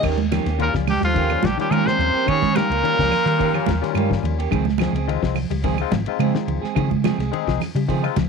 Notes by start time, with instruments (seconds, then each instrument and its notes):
0.02 fingered electric bass D#2, clean electric guitar D#3 A#3 C#4 G4, kick, crash, high conga, claves
0.18 muted clean electric guitar stroke, high conga
0.32 clean electric guitar D#3 F3 A#3 C#4 G4, snare, ride bell, high conga, claves
0.46 fingered electric bass D#2, clean electric guitar A#3 C#4 G4, snare, ride bell
0.59 baritone saxophone A#2, clean electric guitar D#3, tine electric piano G3 A#3 C#4 F4, trombone A#3, trumpet A#4, muted clean electric guitar stroke, ride bell, high conga
0.73 fingered electric bass C#2, clean electric guitar F3, kick, snare
0.87 baritone saxophone G2, trombone G3, trumpet G4, muted clean electric guitar stroke, open hi-hat, high conga, low conga, claves
1.01 fingered electric bass D#2, baritone saxophone F2, clean electric guitar G3, trumpet F4, muted clean electric guitar stroke, ride bell
1.06 trombone F3
1.14 clean electric guitar D#3 A#3 C#4 G4, tine electric piano C#4 F4, muted clean electric guitar stroke, kick, ride bell, high conga
1.30 tine electric piano G3 A#3 C#4 F4, muted clean electric guitar stroke, low conga, claves
1.42 fingered electric bass A#1, clean electric guitar F3, trombone G3, trumpet G4, muted clean electric guitar stroke, kick, snare, ride bell, high conga
1.47 baritone saxophone G2
1.57 baritone saxophone G2, clean electric guitar D#3, tine electric piano G3 A#3 C#4 F4, trombone G3, trumpet G4, muted fingered electric bass stroke, snare, ride bell
1.71 baritone saxophone A#2, fingered electric bass D#3, clean electric guitar D#3 A#3 C#4 G4, trombone A#3, trumpet A#4, ride bell, high conga, claves
1.85 baritone saxophone C3, clean electric guitar D#3, trombone C4, trumpet C5, muted clean electric guitar stroke, snare, high conga
1.98 fingered electric bass D#2, muted clean electric guitar stroke, ride bell, low conga
2.14 clean electric guitar A#3 C#4 G4
2.26 baritone saxophone C#3, clean electric guitar D#3 A#3 C#4 G4, fingered electric bass D#3, trombone C#4, trumpet C#5, kick, ride bell, high conga, claves
2.42 muted clean electric guitar stroke, kick, snare, high conga
2.55 baritone saxophone A#2, clean electric guitar D#3 G3 A#3 C#4 G4, trombone A#3, trumpet A#4, snare, ride bell, high conga, claves
2.69 fingered electric bass C#2, clean electric guitar A#3 C#4, muted clean electric guitar stroke, ride bell
2.83 clean electric guitar D#3, tine electric piano G3 A#3 C#4 F4, muted clean electric guitar stroke, ride bell, high conga
2.99 fingered electric bass C#2, clean electric guitar F3, kick, snare
3.12 muted clean electric guitar stroke, snare, open hi-hat, low conga, claves
3.25 fingered electric bass D#3, clean electric guitar G3, muted clean electric guitar stroke, ride bell
3.39 clean electric guitar D#3 A#3 C#4 G4, tine electric piano C#4 F4, kick, ride bell, high conga
3.54 tine electric piano G3 A#3 C#4 F4, muted clean electric guitar stroke, low conga, claves
3.66 fingered electric bass D#2, clean electric guitar F3, muted clean electric guitar stroke, kick, snare, ride bell, high conga
3.81 clean electric guitar D#3, tine electric piano G3 A#3 C#4 F4, snare, ride bell
3.94 fingered electric bass G2, clean electric guitar D#3 A#3 C#4 G4, ride bell, high conga, claves
4.10 clean electric guitar D#3, muted clean electric guitar stroke, kick, snare
4.23 fingered electric bass D#2, muted clean electric guitar stroke, ride bell, low conga
4.38 clean electric guitar A#3 C#4 G4, ride bell
4.50 fingered electric bass C#2, clean electric guitar D#3 F3 G#3 C4 G#4, kick, ride bell, high conga, claves
4.65 muted clean electric guitar stroke, snare, high conga
4.78 clean electric guitar F3 G#3 C4 G#4, snare, ride bell, high conga, claves
4.93 fingered electric bass C#2, clean electric guitar G#3 C4 G#4, ride bell
5.07 clean electric guitar D#3, tine electric piano G#3 C4 D#4 F4, muted clean electric guitar stroke, ride bell, high conga
5.22 fingered electric bass C2, clean electric guitar F3, kick, snare
5.35 muted clean electric guitar stroke, open hi-hat, low conga, claves
5.50 fingered electric bass C#2, clean electric guitar G3, muted clean electric guitar stroke, ride bell
5.63 clean electric guitar D#3 F3 G#3 C4 G#4, tine electric piano D#4 F4, kick, ride bell, high conga
5.78 tine electric piano G#3 C4 D#4 F4, muted clean electric guitar stroke, claves
5.92 fingered electric bass G#1, clean electric guitar F3, muted clean electric guitar stroke, kick, snare, ride bell, high conga
6.06 tine electric piano G#3 C4 D#4 F4, muted fingered electric bass stroke, muted clean electric guitar stroke, ride bell
6.19 fingered electric bass C#3, clean electric guitar F3 G#3 C4 G#4, ride bell, high conga, claves
6.34 clean electric guitar D#3, muted clean electric guitar stroke, snare
6.47 fingered electric bass C#2, muted clean electric guitar stroke, ride bell, low conga
6.61 clean electric guitar G#3 C4 G#4, muted fingered electric bass stroke, snare
6.75 fingered electric bass C#3, clean electric guitar D#3 F3 G#3 C4 G#4, kick, ride bell, high conga, claves
6.90 muted clean electric guitar stroke, kick, high conga
7.03 clean electric guitar F3 G#3 C4 G#4, snare, ride bell, high conga, claves
7.18 fingered electric bass C2, clean electric guitar G#3 G#4, snare, ride bell
7.32 clean electric guitar D#3, tine electric piano G#3 C4 D#4 G#4, muted clean electric guitar stroke, ride bell, high conga
7.47 fingered electric bass C2, clean electric guitar F3, kick, snare
7.60 muted clean electric guitar stroke, snare, open hi-hat, low conga, claves
7.75 fingered electric bass C#3, clean electric guitar G3, muted clean electric guitar stroke, ride bell
7.88 clean electric guitar D#3 F3 C4 G#4, tine electric piano D#4 F4, muted clean electric guitar stroke, kick, ride bell, high conga
8.03 tine electric piano G#3 C4 D#4 F4, muted clean electric guitar stroke, claves
8.16 fingered electric bass C#2, clean electric guitar F3, muted clean electric guitar stroke, kick, snare, ride bell, high conga